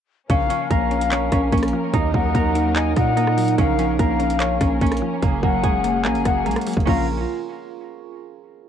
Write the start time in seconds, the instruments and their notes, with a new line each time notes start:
0.29 808-style bass A#1, synth pluck C#3, string section F3 A#3 C#4 A#4, harp C#4, flute F5, kick, closed hi-hat
0.49 synth pluck F3, harp C#4, closed hi-hat
0.70 808-style bass A#1, synth pluck A#3, harp A#4, flute F5, kick, closed hi-hat
0.91 synth pluck C#4, closed hi-hat
1.01 closed hi-hat
1.11 harp C#4, synth pluck C#5, clap, closed hi-hat
1.32 808-style bass A#1, harp C#4, synth pluck C#4, kick, cross-stick, closed hi-hat
1.53 808-style bass A#1, synth pluck A#3, harp C#4, kick, closed hi-hat
1.58 closed hi-hat
1.63 cross-stick, closed hi-hat
1.68 closed hi-hat
1.73 synth pluck F3
1.94 808-style bass D#2, synth pluck D#3, string section F#3 D#4, harp D#4, kick, closed hi-hat
2.14 808-style bass D#2, synth pluck F#3, harp D#4, flute F#5, kick
2.35 808-style bass D#2, synth pluck A#3, harp A#4, kick, closed hi-hat
2.55 synth pluck D#4, closed hi-hat
2.76 harp D#4, synth pluck D#5, flute G#5, clap, closed hi-hat
2.96 808-style bass A#2, harp D#4, synth pluck D#4, flute F#5, kick, cross-stick, closed hi-hat
3.16 synth pluck A#3, harp D#4, closed hi-hat
3.27 cross-stick
3.37 synth pluck F#3, closed hi-hat, open hi-hat
3.48 closed hi-hat
3.58 808-style bass A#1, synth pluck C#3, string section F3 A#3 C#4, harp C#4, flute F5, kick, closed hi-hat
3.79 synth pluck F3, harp C#4, closed hi-hat
3.99 808-style bass A#1, synth pluck A#3, harp A#4, flute F5, kick, closed hi-hat
4.19 synth pluck C#4, closed hi-hat
4.30 closed hi-hat
4.40 harp C#4, synth pluck C#5, clap, closed hi-hat
4.61 808-style bass A#1, synth pluck C#4, harp C#4, kick, cross-stick, closed hi-hat
4.82 808-style bass A#1, synth pluck A#3, harp C#4, kick, closed hi-hat
4.87 closed hi-hat
4.92 cross-stick, closed hi-hat
4.97 closed hi-hat
5.02 synth pluck F3
5.22 808-style bass F#1, synth pluck C#3, string section F#3 A#3 G#4, harp A#3, kick, closed hi-hat
5.43 808-style bass F#1, synth pluck F#3, harp A#3, flute F#5, kick
5.64 808-style bass F#1, synth pluck G#3, harp G#4, kick, closed hi-hat
5.84 synth pluck A#3, closed hi-hat
6.05 808-style bass A#1, harp A#3, synth pluck C#4, flute G#5, clap, closed hi-hat
6.15 808-style bass F#1, closed hi-hat
6.25 808-style bass F#1, synth pluck A#3, harp A#3, flute F#5, kick, cross-stick, closed hi-hat
6.46 808-style bass A#1, synth pluck G#3, harp A#3, closed hi-hat
6.51 closed hi-hat
6.56 cross-stick, closed hi-hat
6.61 closed hi-hat
6.66 synth pluck F#3, closed hi-hat, open hi-hat
6.73 808-style bass F#1, kick, closed hi-hat
6.80 closed hi-hat
6.85 808-style bass A#1, synth pluck C#3 F3 A#3 C#4, string section F3 A#3 C#4 A#4, harp C#4 F4 A#4, flute F5, kick, crash